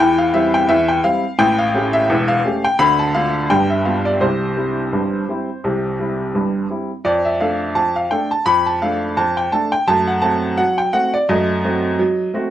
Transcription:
0.00 0.28 E2 medium
0.00 0.28 E3 medium
0.00 0.18 G5 loud
0.18 0.34 F5 medium
0.34 0.53 G3 medium
0.34 0.53 C4 medium
0.34 0.54 E4 medium
0.34 0.53 E5 medium
0.54 0.69 G5 loud
0.69 0.99 E2 medium
0.69 0.99 E3 medium
0.69 0.88 E5 loud
0.88 1.04 G5 medium
1.04 1.23 G3 medium
1.04 1.24 C4 medium
1.04 1.24 E4 medium
1.04 1.39 F5 medium
1.39 1.69 A1 medium
1.39 1.69 A2 medium
1.39 1.58 G5 loud
1.58 1.94 F5 medium
1.74 1.94 A3 soft
1.74 1.94 C#4 medium
1.74 1.94 G4 medium
1.93 2.29 E5 loud
2.09 2.39 E1 medium
2.09 2.39 E2 medium
2.28 2.64 F5 loud
2.45 2.64 A3 medium
2.45 2.64 C#4 soft
2.45 2.65 G4 medium
2.64 2.80 G5 loud
2.79 3.09 D2 medium
2.79 3.09 D3 medium
2.79 2.99 B5 loud
2.99 3.15 A5 medium
3.15 3.35 A3 soft
3.15 3.35 D4 soft
3.15 3.35 F4 medium
3.15 3.50 F5 medium
3.50 3.81 G1 medium
3.50 3.81 G2 medium
3.50 3.70 G5 loud
3.70 3.86 E5 medium
3.85 4.05 G3 soft
3.85 4.06 B3 soft
3.85 4.06 F4 soft
3.85 4.05 F5 medium
4.05 4.21 D5 medium
4.21 4.51 C2 medium
4.21 4.51 C3 medium
4.21 6.34 C5 medium
4.57 4.77 G3 soft
4.57 4.77 C4 soft
4.57 4.77 E4 soft
4.93 5.23 G1 medium
4.93 5.23 G2 medium
5.28 5.48 G3 soft
5.28 5.48 C4 soft
5.28 5.48 E4 soft
5.64 5.94 C2 medium
5.64 5.94 C3 medium
5.99 6.19 G3 soft
5.99 6.19 C4 soft
5.99 6.20 E4 soft
6.35 6.65 G1 medium
6.35 6.65 G2 medium
6.70 6.89 G3 soft
6.70 6.90 C4 soft
6.70 6.90 E4 soft
7.05 7.35 F2 medium
7.05 7.25 D5 medium
7.25 7.41 E5 medium
7.41 7.60 A3 soft
7.41 7.61 D4 soft
7.41 7.61 A4 soft
7.41 7.76 F5 medium
7.75 8.06 F2 medium
7.75 7.95 A5 medium
7.96 8.11 F5 medium
8.11 8.31 A3 soft
8.11 8.31 D4 soft
8.11 8.31 A4 soft
8.11 8.31 G5 medium
8.31 8.47 A5 medium
8.46 8.76 F2 medium
8.46 8.66 B5 loud
8.66 8.82 A5 medium
8.82 9.02 A3 soft
8.82 9.02 D4 soft
8.82 9.02 A4 soft
8.82 9.17 F5 medium
9.17 9.47 F2 medium
9.17 9.37 A5 medium
9.37 9.53 G5 medium
9.52 9.72 A3 soft
9.52 9.72 D4 soft
9.52 9.73 A4 medium
9.52 9.72 A5 medium
9.72 9.88 G5 medium
9.88 10.18 F#2 medium
9.88 10.09 A3 medium
9.88 10.07 A5 loud
10.07 10.23 F#5 medium
10.22 10.42 A3 soft
10.22 10.42 C4 soft
10.22 10.42 F#4 soft
10.22 10.58 A5 medium
10.58 10.88 F#3 medium
10.58 10.77 F#5 medium
10.78 10.93 G5 medium
10.93 11.13 A3 soft
10.93 11.13 C4 soft
10.93 11.13 F#4 medium
10.93 11.13 F#5 loud
11.14 11.29 D5 medium
11.29 11.59 F#2 medium
11.29 11.50 A3 medium
11.29 12.34 D#5 medium
11.64 11.84 A3 medium
11.64 11.84 C4 medium
11.64 11.84 F#4 medium
11.99 12.29 F#3 medium
12.34 12.50 A3 medium
12.34 12.50 C4 medium
12.34 12.50 F#4 medium

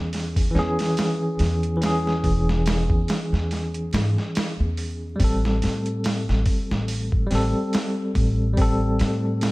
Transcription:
0.00 0.51 E2 medium
0.00 0.48 E3 medium
0.00 0.50 C#4 medium
0.00 0.53 G#4 medium
0.13 snare soft
0.13 open hi-hat medium
0.36 kick medium
0.36 open hi-hat medium
0.51 1.75 E3 medium
0.55 0.76 E2 medium
0.55 1.77 C#4 medium
0.55 1.79 G#4 medium
0.55 snare soft
0.79 snare soft
0.79 open hi-hat medium
0.97 snare loud
0.97 open hi-hat medium
1.39 2.25 E2 medium
1.39 snare soft
1.39 open hi-hat medium
1.63 closed hi-hat soft
1.77 3.86 E3 medium
1.81 3.88 C#4 medium
1.81 snare loud
1.81 open hi-hat medium
1.86 3.90 G#4 medium
2.07 snare soft
2.24 2.85 E1 medium
2.24 kick medium
2.24 open hi-hat medium
2.49 snare soft
2.66 snare loud
2.66 open hi-hat medium
2.90 3.06 E2 medium
2.90 kick medium
3.08 snare loud
3.08 open hi-hat medium
3.33 3.89 E2 medium
3.33 snare soft
3.51 snare soft
3.51 open hi-hat medium
3.74 closed hi-hat soft
3.93 4.14 G#2 medium
3.93 snare loud
3.93 open hi-hat medium
4.18 snare soft
4.35 snare loud
4.35 open hi-hat medium
4.60 5.17 E2 medium
4.77 open hi-hat medium
5.16 7.24 G3 medium
5.16 kick loud
5.16 open hi-hat medium
5.20 5.65 A1 medium
5.20 7.27 C4 medium
5.24 7.29 A4 medium
5.45 snare soft
5.62 6.24 A2 medium
5.62 snare soft
5.62 open hi-hat medium
5.86 closed hi-hat soft
6.04 snare loud
6.04 open hi-hat medium
6.29 6.45 A1 medium
6.29 snare soft
6.46 kick medium
6.46 open hi-hat medium
6.71 7.28 A1 medium
6.71 snare medium
6.88 open hi-hat medium
7.12 kick medium
7.26 8.51 G3 medium
7.31 7.52 A1 medium
7.31 8.53 C4 medium
7.31 snare soft
7.31 open hi-hat medium
7.35 8.55 A4 medium
7.73 snare loud
7.73 open hi-hat medium
8.15 9.02 A1 medium
8.15 kick medium
8.15 open hi-hat medium
8.53 9.52 G3 medium
8.57 9.52 C4 medium
8.57 kick loud
8.57 open hi-hat medium
8.62 9.52 A4 medium
8.99 9.52 A2 medium
8.99 snare medium
8.99 open hi-hat medium
9.41 snare loud
9.41 open hi-hat medium

